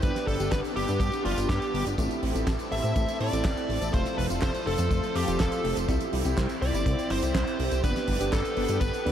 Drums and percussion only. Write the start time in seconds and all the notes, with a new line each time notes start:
0.02 kick, closed hi-hat, tambourine
0.16 snare, closed hi-hat, tambourine
0.27 kick, open hi-hat
0.40 closed hi-hat, tambourine
0.52 kick, snare, clap, closed hi-hat, tambourine
0.64 closed hi-hat, tambourine
0.77 open hi-hat
0.88 closed hi-hat, tambourine
1.00 kick, closed hi-hat, tambourine
1.12 closed hi-hat, tambourine
1.25 open hi-hat
1.38 closed hi-hat, tambourine
1.49 kick, snare, clap, closed hi-hat
1.62 closed hi-hat, tambourine
1.75 open hi-hat
1.86 closed hi-hat, tambourine
1.98 kick, closed hi-hat, tambourine
2.11 closed hi-hat, tambourine
2.23 open hi-hat
2.35 closed hi-hat, tambourine
2.47 kick, snare, clap, closed hi-hat, tambourine
2.59 closed hi-hat, tambourine
2.72 open hi-hat
2.83 closed hi-hat, tambourine
2.96 kick, closed hi-hat, tambourine
3.08 closed hi-hat, tambourine
3.20 open hi-hat
3.33 closed hi-hat, tambourine
3.45 kick, snare, clap, closed hi-hat, tambourine
3.57 closed hi-hat, tambourine
3.70 open hi-hat
3.82 closed hi-hat, tambourine
3.94 kick, closed hi-hat, tambourine
4.05 snare, closed hi-hat, tambourine
4.18 kick, open hi-hat
4.30 closed hi-hat, tambourine
4.42 kick, snare, clap, closed hi-hat, tambourine
4.54 closed hi-hat, tambourine
4.67 open hi-hat
4.78 closed hi-hat, tambourine
4.91 kick, closed hi-hat, tambourine
5.03 closed hi-hat, tambourine
5.15 open hi-hat
5.28 closed hi-hat, tambourine
5.40 kick, snare, clap, closed hi-hat, tambourine
5.52 closed hi-hat, tambourine
5.65 open hi-hat
5.77 closed hi-hat, tambourine
5.89 kick, closed hi-hat, tambourine
6.00 closed hi-hat, tambourine
6.13 open hi-hat
6.25 closed hi-hat, tambourine
6.38 kick, snare, clap, closed hi-hat, tambourine
6.49 closed hi-hat, tambourine
6.62 open hi-hat
6.74 closed hi-hat, tambourine
6.86 kick, closed hi-hat, tambourine
6.99 closed hi-hat, tambourine
7.10 open hi-hat
7.22 closed hi-hat, tambourine
7.35 kick, snare, clap, closed hi-hat, tambourine
7.47 closed hi-hat, tambourine
7.60 open hi-hat
7.71 closed hi-hat, tambourine
7.84 kick, closed hi-hat, tambourine
7.96 snare, closed hi-hat, tambourine
8.08 kick, open hi-hat
8.21 closed hi-hat, tambourine
8.33 kick, snare, clap, closed hi-hat, tambourine
8.45 closed hi-hat, tambourine
8.57 open hi-hat
8.68 closed hi-hat, tambourine
8.81 kick, closed hi-hat, tambourine
8.93 closed hi-hat, tambourine
9.06 open hi-hat